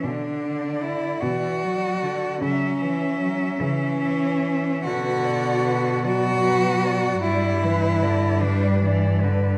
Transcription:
<<
  \new Staff \with { instrumentName = "Cello" } { \time 6/8 \key b \minor \tempo 4. = 50 r8 d''4. d''4 | e''8 e''4. e''4 | b'8 d''8 b'8 d''8 b'8 d''8 | d''8 b'8 d''8 b'8 d''8 b'8 | }
  \new Staff \with { instrumentName = "Cello" } { \time 6/8 \key b \minor d'4 e'8 fis'4. | cis'4. cis'4. | fis'4. fis'4. | e'4. d'8 r4 | }
  \new Staff \with { instrumentName = "Cello" } { \clef bass \time 6/8 \key b \minor d4. e8 fis8 d8 | fis8 e8 fis8 e4. | d4. fis4. | g8 e8 d8 g8 e8 d8 | }
  \new Staff \with { instrumentName = "Cello" } { \clef bass \time 6/8 \key b \minor b,4. b,4. | cis4. cis4. | b,2. | g,2. | }
>>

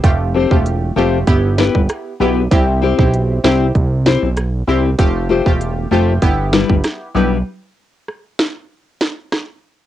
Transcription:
<<
  \new Staff \with { instrumentName = "Nylon-string guitar" } { \time 4/4 \key c \major \tempo 4 = 97 r8 <a c' g' c''>8 r8 <a c' g' c''>8 r8 <b e' g' b'>8 r8 <b e' g' b'>8 | r8 <c' e' g' c''>8 r8 <c' e' g' c''>8 r8 <c' e' g' c''>8 r8 <c' e' g' c''>8 | r8 <a f' g' c''>8 r8 <a f' g' c''>8 r8 <g d' e' b'>8 r8 <g d' e' b'>8 | r1 | }
  \new Staff \with { instrumentName = "Synth stab" } { \time 4/4 \key c \major <a f' g'>8. <a f' g'>8. <a f' g'>8 <b e' g'>4. <b e' g'>16 r16 | <c' e' g'>8. <c' e' g'>8. <c' e' g'>8 r4. <c' e' g'>16 r16 | <a f' g'>8. <a f' g'>8. <a f' g'>8 <b e' g'>4. <b e' g'>16 r16 | r1 | }
  \new Staff \with { instrumentName = "Analog synth bass" } { \clef bass \time 4/4 \key c \major f,,8. e,,8. f,,8 g,,8. g,,16 r8 b,,8 | c,8. b,,8. c,8 c,8. b,,8. c,8 | f,,8. e,,8. f,,8 g,,8. g,,16 r8 b,,8 | r1 | }
  \new DrumStaff \with { instrumentName = "Drums" } \drummode { \time 4/4 <hh bd>8. bd16 hh4 <hh bd>8 sn16 bd16 <hh ss>4 | <hh bd>8. bd16 hh8 sn8 <hh bd>8 sn8 <hh ss>4 | <hh bd>8. bd16 hh4 <hh bd>8 sn16 bd16 <hh ss sn>4 | r4 ss8 sn8 r8 sn8 <ss sn>4 | }
>>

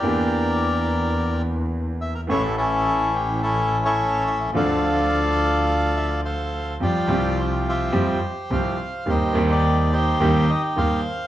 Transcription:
<<
  \new Staff \with { instrumentName = "Bandoneon" } { \time 4/4 \key d \minor \tempo 4 = 106 << { d''2~ d''8 r4 e''16 bes'16 | cis''8 a'4 g'8 a'8. cis''8. e''8 | d''2~ d''8 e''8 f''4 | \key c \mixolydian d''4 c''8 e''4 r8 f''4 |
c''8. d''8. c''4 ees''8 f''4 | } \\ { <g' bes'>2~ <g' bes'>8 r4. | <e' a'>8 <cis' e'>4. <cis' e'>8. <e' a'>4~ <e' a'>16 | <f' a'>2. <a' c''>4 | <f' g'>4. <g' c''>4. c''4 |
<ees' g'>8. g'8. <ees' g'>4. c''4 | } >> }
  \new Staff \with { instrumentName = "Grand piano" } { \clef bass \time 4/4 \key d \minor <e, e bes d' g'>1 | <a,, a, e a cis' a'>1 | <d, d f c' d' a'>1 | \key c \mixolydian <f, f g c' g'>8 <c, c f g c' g'>4. <f, f g c' g'>8 r8 <c, c f g c' g'>8 r8 |
<ees, ees g c' g'>8 <ees, ees g c' g'>4. <ees, ees g c' g'>8 r8 <ees, ees g c' g'>8 r8 | }
  \new Staff \with { instrumentName = "Double bass" } { \clef bass \time 4/4 \key d \minor e,1 | a,,1 | d,1 | \key c \mixolydian f,8 c,4. f,8 r8 c,8 r8 |
ees,8 ees,4. ees,8 r8 ees,8 r8 | }
>>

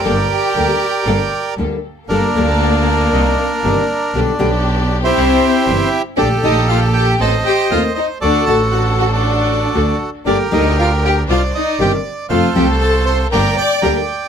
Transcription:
<<
  \new Staff \with { instrumentName = "Bandoneon" } { \time 4/4 \key g \minor \tempo 4 = 118 << { g''2. r4 | bes'1 | r4. r16 c''4.~ c''16 r8 | d''8 ees''8 f''8 g''8 a''8 g''8 f''8 ees''8 |
d''8 a''8 fis''8 fis''16 d''4.~ d''16 r8 | d''8 ees''8 f''8 g''8 f''8 ees''8 g''8 r8 | f''8 g''8 a''8 c'''8 bes''8 d'''8 bes''8 r8 | } \\ { <bes' d''>2. r4 | d'1~ | d'4.~ d'16 <e' g'>2 r16 | <g' a'>2 <c'' ees''>2 |
<fis' a'>4.~ <fis' a'>16 <fis' a'>2 r16 | <g' bes'>2 d''2 | <a' c''>2 <d'' g''>2 | } >> }
  \new Staff \with { instrumentName = "Violin section" } { \time 4/4 \key g \minor g'2. r4 | bes1 | r4. r16 c'4.~ c'16 r8 | d'8 ees'8 f'8 g'8 a'8 g'8 f'8 ees'8 |
d'8 a'8 fis'8 fis'16 d'4.~ d'16 r8 | d'8 ees'8 f'8 g'8 f'8 ees'8 g'8 r8 | f'8 g'8 a'8 c''8 bes'8 d''8 bes'8 r8 | }
  \new Staff \with { instrumentName = "String section" } { \time 4/4 \key g \minor <bes g' a'>8 r8 <bes g' a'>8 r8 <bes g' a'>8 r8 <bes g' a'>8 r8 | <bes g' a'>8 <bes g' a''>4. <c' d' ees'>8 r8 <c' d' ees'>8 r8 | <b d' g'>8 <b d' g'>4. <c' d' e'>8 r8 <c' d' e'>8 r8 | <bes g' a'>8 <bes g' a'>4. <c' ees' a'>8 r8 <c' ees' a'>8 r8 |
<d' fis' a'>8 <d' fis' a'>2~ <d' fis' a'>8 <d' fis' a'>8 r8 | <d' g' bes'>8 <d' g' bes'>4. <d' ees' c''>8 r8 <d' ees' c''>8 r8 | <c' f' a'>8 <c' f' a'>4. <bes d' g'>8 r8 <bes d' g'>8 r8 | }
  \new Staff \with { instrumentName = "Nylon-string guitar" } { \time 4/4 \key g \minor <d g bes d' a'>8 r8 <d g bes d' a'>8 r8 <d g bes d' a'>8 r8 <d g bes d' a'>8 r8 | <d g bes d' a'>8 <d g bes d' a'>8 r2 <c ees g d' g'>8 r8 | <b, d g b g'>8 <b, d g b g'>8 r2 <c e g d' e'>8 r8 | <d a d' g'>8 <d a d' g'>8 r2 <ees a c'>8 r8 |
<d a d' fis'>8 <d a d' fis'>8 r2 <d a d' fis'>8 r8 | <d g bes d' g'>8 <d g bes d' g'>8 r2 <c ees g d' g'>8 r8 | <c f a c' f'>8 <c f a c' f'>8 r2 <d g bes d' g'>8 r8 | }
  \new Staff \with { instrumentName = "Double bass" } { \clef bass \time 4/4 \key g \minor g,,8 r8 d,8 r8 g,,8 r8 d,8 r8 | g,,8 d,4. c,8 r8 g,,8 r8 | b,,8 b,,4. c,8 r8 g,,8 r8 | bes,,8 bes,,4. a,,8 r8 ees,8 r8 |
d,8 a,,2~ a,,8 d,8 r8 | g,,8 d,4. c,8 r8 g,,8 r8 | f,8 c,4. g,,8 r8 d,8 r8 | }
>>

